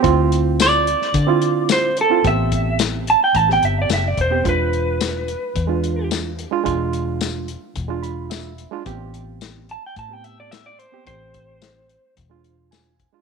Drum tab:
HH |x-x-x-x-x-x-x-x-|x-x-x-x-x-x-x-x-|x-x-x-x-x-x-x-x-|x-x-x-x-x-x-x-x-|
TB |----x-------x---|----x-------x---|----x-------x---|----x-------x---|
SD |----o--o----o---|----o----o--o---|----o-------o---|----o-------o---|
BD |o-------o-------|o-o-----o-----o-|o-------o-------|o-------o-------|

HH |x-x-x-x-x-x-x-x-|x-x-x-x-x-x-x-x-|
TB |----x-------x---|----x-------x---|
SD |----o-------o---|----o-------o---|
BD |o-------o-------|o-o-----o-----o-|